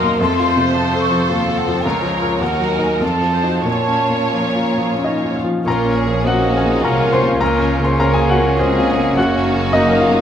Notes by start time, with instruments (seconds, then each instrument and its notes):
Already playing: grand piano D#2 A#2 A#3 F#4 A#4, cello section F#2, violin section A#3 D#4 D#5, viola section A#4, flute section C6
0.03 grand piano A#3
0.18 cello section F2, grand piano F2, violin section A3 A4 C5, viola section A4, flute section C6
0.39 grand piano F4
0.48 viola section C5
0.56 grand piano C3
0.73 grand piano F3, violin section C4 A4, flute section A5
0.93 grand piano A4
1.00 flute section C#6
1.11 grand piano F3
1.27 cello section D#2, violin section C4 C5, grand piano F4, viola section A4, flute section F5
1.49 grand piano A4
1.57 flute section F#5
1.68 grand piano F3
1.83 cello section C#2, grand piano C#2, violin section F4 C#5, viola section A#4, flute section A#5
2.02 grand piano F3
2.12 violin section A#4, viola section C#5
2.22 grand piano F4 A#4
2.40 grand piano D#2, cello section D#2, violin section D#4 F#4 A#4, viola section A#4, flute section F#5
2.58 grand piano F#3
2.72 flute section G#5
2.78 grand piano D#4 A#4
3.00 grand piano F2, cello section F2, violin section C4 F4 A4, viola section A4, flute section A5
3.21 grand piano F3
3.33 violin section C4, viola section C5
3.43 grand piano D#4 F#4
3.65 grand piano A#2, cello section A#2, violin section C#4 F4 C#5, viola section C#5, flute section A5
3.88 grand piano C#4
4.10 grand piano A#3
4.33 grand piano F3, flute section A#5
4.55 grand piano F4
4.78 grand piano F3
4.99 grand piano C#4, clarinet D#4
5.04 grand piano D#4 D#5
5.23 grand piano F4
5.34 clarinet F4, grand piano F4 F5
5.44 grand piano F3
5.65 double bass section A#1, grand piano A#2 A#5, cello section A#2, viola section A#3, bassoon A#3, violin section C#4 F4, french horn section C#4 F4, clarinet A#4, oboe C#5
5.70 grand piano A#4
5.85 grand piano C#4
5.95 bassoon C#4, violin section G#4
6.07 grand piano F3
6.24 grand piano A#3 F#5, bassoon C4, viola section C#4, violin section D#4 F#4, clarinet F#4, oboe D#5
6.28 grand piano F#4
6.43 grand piano F4
6.54 clarinet G#4, grand piano G#4 G#5
6.63 grand piano A#3
6.81 double bass section C2, cello section C3, bassoon A#3, grand piano C#4 A#5, violin section F4, clarinet A#4, oboe C#5
6.85 grand piano A#4
7.00 grand piano F4
7.13 clarinet C5, grand piano C5 C6
7.21 grand piano A#3
7.39 grand piano C#2 A#4 A#5, double bass section C#2, cello section C#3, viola section A#3, french horn section A#3, violin section C#4 F4, bassoon C#4, oboe C#5
7.43 clarinet A#4
7.58 grand piano C#4
7.80 grand piano C#3
7.84 grand piano C5 C6, clarinet C5
7.98 grand piano A#3 A#4 A#5, viola section A#3, bassoon C#4, violin section F4, clarinet A#4
8.13 clarinet G#4, grand piano G#4 G#5
8.20 grand piano F4
8.29 clarinet F#4, grand piano F#4 F#5
8.37 grand piano A#3
8.57 viola section G#3, grand piano C4 C#4 C5, violin section G#4, oboe D#5
8.62 clarinet C4
8.78 grand piano F4
8.91 clarinet C#4, grand piano C#4 C#5
8.97 grand piano A#3
9.15 double bass section F#1, grand piano F#2 F#4 F#5, cello section F#2, bassoon A#3, viola section A#3, violin section C#4 F#4, french horn section F#4, clarinet F#4, oboe C#5
9.36 grand piano C#4
9.44 violin section D#4
9.55 grand piano C#3
9.73 grand piano A#3 D#4 D#5, viola section C#4, clarinet D#4, oboe D#5
9.90 grand piano A#4
10.00 clarinet F4, grand piano F4 F5
10.10 grand piano A#3